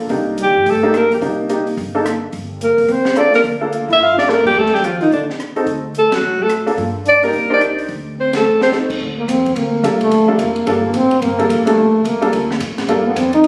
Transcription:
Already playing: F4 A4
0.09 C2 A#3 D4 D#4 G4, kick, open hi-hat
0.38 G3, closed hi-hat
0.42 D#2 G4
0.56 G2
0.66 G1 A3, kick, open hi-hat
0.70 A4
0.83 A#3 D4 D#4 G4
0.94 A#3 A#4, cross-stick, closed hi-hat
1.11 G2 G3 G4, open hi-hat
1.21 C2 A#3 D4 D#4 G4, kick, open hi-hat
1.49 A#3 D4 D#4 G4, closed hi-hat
1.67 open hi-hat
1.77 G1, kick, open hi-hat
1.95 A#3 D4 D#4 A4
2.06 cross-stick, closed hi-hat
2.33 G1, kick, open hi-hat
2.61 A#3 A#4, closed hi-hat
2.78 F1, open hi-hat
2.88 A#1 C4 C5, kick, open hi-hat
3.05 snare
3.16 A#3 D4 F4 A4 D5, cross-stick, closed hi-hat
3.33 A#3 A#4, snare, open hi-hat
3.44 D2, kick, open hi-hat
3.61 A#3 D4 F4 A4
3.73 closed hi-hat
3.88 G#1 E4, open hi-hat
3.92 E5
3.99 G2 F4 F5
4.16 D4 D5, snare
4.27 A#3 D4 F4 A4 A#4, snare
4.45 G3 G4, kick, crash
4.55 D#2 A3 A4, kick
4.66 snare
4.73 G3 G4, snare
4.84 F3 F4, closed hi-hat
5.01 D#3 D#4, open hi-hat
5.11 A#1 D3 D4, kick, open hi-hat
5.30 snare
5.40 cross-stick, closed hi-hat
5.56 C4 D#4 F#4 A4, open hi-hat
5.66 D2, kick, open hi-hat
5.95 A3 A4, closed hi-hat
6.12 F#3 F#4, muted upright bass stroke, snare, ride
6.22 A2
6.40 A3 A4
6.49 cross-stick, closed hi-hat
6.66 A#3 D4 F4 A4, open hi-hat
6.77 G2, kick, open hi-hat
7.05 D4 D5, closed hi-hat
7.23 A#3 D4 D#4 G4 A#4, open hi-hat
7.33 C2, kick, open hi-hat
7.50 D4 D#4 G4 C5 D5
7.61 cross-stick, closed hi-hat
7.79 open hi-hat
7.88 D2, kick, open hi-hat
8.18 C4 C5
8.33 A3 A4, snare, ride
8.43 A1
8.61 C4 C5, snare
8.72 C4 D#4 F#4 A4, snare
8.90 kick, crash
9.00 D2, kick
9.18 A#3
9.28 F2 C4, kick, hi-hat pedal, ride
9.46 kick, ride
9.56 D2 A#3, kick, ride
9.83 C2 G3 A#3 D4 F4 A4, kick, hi-hat pedal, ride
10.01 A3, ride
10.11 A#1, kick, ride
10.28 G3 A#3 D4 F4 A4
10.39 F1 A#3, kick, hi-hat pedal, ride
10.56 ride
10.66 G1 G3 A#3 D4 F4 A4, kick, ride
10.84 A#3
10.94 A1 C4, kick, hi-hat pedal, ride
11.11 ride
11.22 G1 A#3, kick, ride
11.39 G3 A#3 D4 F4 A4, ride
11.49 A1, kick, hi-hat pedal, ride
11.65 G3 A3 A#3 D4 F4 A4, ride
11.77 A#1, kick
12.04 C2 A#3, kick, hi-hat pedal, ride
12.21 G3 A#3 D4 F4 A4, ride
12.32 D2, kick, ride
12.51 snare
12.60 A2, kick, hi-hat pedal, ride
12.78 snare, ride
12.88 G2 G3 A#3 D4 F4 A4, kick, ride
13.07 B3
13.16 F2 C4, kick, hi-hat pedal, ride
13.33 D#4, ride
13.44 C3, kick, ride

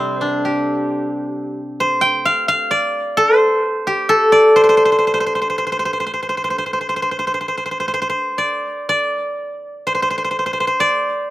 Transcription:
Already playing: C3 F3 G3 C4 D4 G4 A4 C5 D5
0.17 B4
0.21 D4
0.29 A#4
0.41 A4
0.45 G4
1.80 C5
2.01 G5
2.25 F5
2.48 F5
2.71 D5
3.17 A4
3.38 C5
3.87 G4
4.09 A4
4.32 D5
4.56 C5
4.64 C5
4.69 C5
4.77 C5
4.85 C5
4.92 C5
4.99 C5
5.07 C5
5.14 C5
5.20 C5
5.26 C5
5.35 C5
5.42 C5
5.50 C5
5.58 C5
5.67 C5
5.72 C5
5.79 C5
5.85 C5
5.93 C5
6.00 C5
6.07 C5
6.14 C5
6.23 C5
6.29 C5
6.37 C5
6.44 C5
6.50 C5
6.58 C5
6.66 C5
6.73 C5
6.81 C5
6.89 C5
6.96 C5
7.02 C5
7.11 C5
7.19 C5
7.27 C5
7.34 C5
7.41 C5
7.48 C5
7.57 C5
7.66 C5
7.71 C5
7.80 C5
7.88 C5
7.94 C5
8.02 C5
8.10 C5
8.38 D5
8.89 D5
9.87 C5
9.95 C5
10.02 C5
10.10 C5
10.18 C5
10.24 C5
10.31 C5
10.39 C5
10.46 C5
10.53 C5
10.60 C5
10.67 C5
10.80 D5

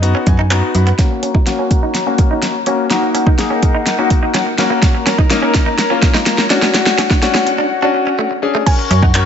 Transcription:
Already playing: F#2
0.02 B3 D#4 F#4 F#5, closed hi-hat
0.15 C#4
0.27 F#2 G#5, muted clean electric guitar stroke, kick, closed hi-hat
0.39 D#4
0.50 B3 C#4 D#4 F#4 A#5, clap, closed hi-hat
0.63 muted clean electric guitar stroke
0.75 F#2 B5, closed hi-hat
0.87 B3, closed hi-hat
0.98 A#3 C#4 F#4 C#5 A#5, kick, snare, closed hi-hat
1.11 muted clean electric guitar stroke
1.23 C#4, closed hi-hat
1.35 D#4, kick
1.46 A#3 C#4 F#4, snare, closed hi-hat
1.59 C#4
1.71 muted clean electric guitar stroke, kick, closed hi-hat
1.83 D#4
1.95 snare, closed hi-hat
2.06 A#3 C#4 F#4
2.18 muted clean electric guitar stroke, kick, closed hi-hat
2.31 D#4
2.42 snare, closed hi-hat
2.66 A#3 C#4 F#4, closed hi-hat
2.90 A#3 D#4 F#4 A#4 F#5, snare, closed hi-hat
3.02 muted clean electric guitar stroke
3.14 C#4, closed hi-hat
3.27 D#4, kick
3.38 A#3 D#4 G#4, snare, closed hi-hat
3.50 C#4
3.63 muted clean electric guitar stroke, kick, closed hi-hat
3.75 D#4
3.86 snare, closed hi-hat
3.98 A#3 C#4 D#4 F#4
4.10 muted clean electric guitar stroke, kick, closed hi-hat
4.23 D#4
4.34 C#4 F#5, snare, closed hi-hat
4.47 muted clean electric guitar stroke
4.58 A#3 C#4 F#4 A#4 C#5 A#5, snare, closed hi-hat
4.70 A#3
4.83 kick, snare, closed hi-hat
4.95 muted clean electric guitar stroke
5.06 C#4, snare, closed hi-hat
5.18 D#4, kick
5.30 A#3 C#4 D#4, snare, closed hi-hat
5.42 C#4
5.54 muted clean electric guitar stroke, kick, snare, closed hi-hat
5.66 D#4
5.78 snare, closed hi-hat
5.90 A#3 C#4 F4
6.02 muted clean electric guitar stroke, kick, snare, closed hi-hat
6.14 D#4, snare
6.26 snare, closed hi-hat
6.38 snare
6.50 C#4 D4 F#4 F#5, snare, closed hi-hat
6.62 snare
6.74 snare, closed hi-hat
6.86 muted clean electric guitar stroke, snare
6.98 C#4, snare, closed hi-hat
7.10 D4, kick, snare
7.22 C#4 D4 F#4, snare, closed hi-hat
7.34 C#4, snare
7.46 muted clean electric guitar stroke, closed hi-hat
7.58 D4
7.82 C#4 D4 F#4
7.94 muted clean electric guitar stroke
8.07 C#4
8.19 A3
8.31 muted clean electric guitar stroke
8.42 C#4 D4 G#4
8.55 A3
8.66 C#4 F#4 A#4 C#5 G#5 C#6, kick, closed hi-hat, crash
8.79 muted clean electric guitar stroke
8.91 F#2 C#4, closed hi-hat
9.03 D#4 F#5, kick
9.14 C#4 F#4 A#4 C#5, clap, closed hi-hat

